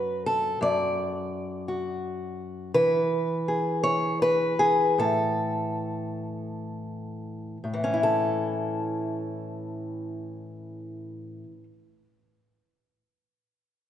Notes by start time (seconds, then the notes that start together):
Already playing: F#2 F#4 B4
0.26 A4
0.61 F#2 D5
1.68 F#4
2.74 E3 B4
3.48 G#4
3.83 C#5
4.22 B4
4.59 G#4
4.98 A2 A4
7.64 A2
7.74 E3
7.84 C#4
7.94 E4
8.03 A4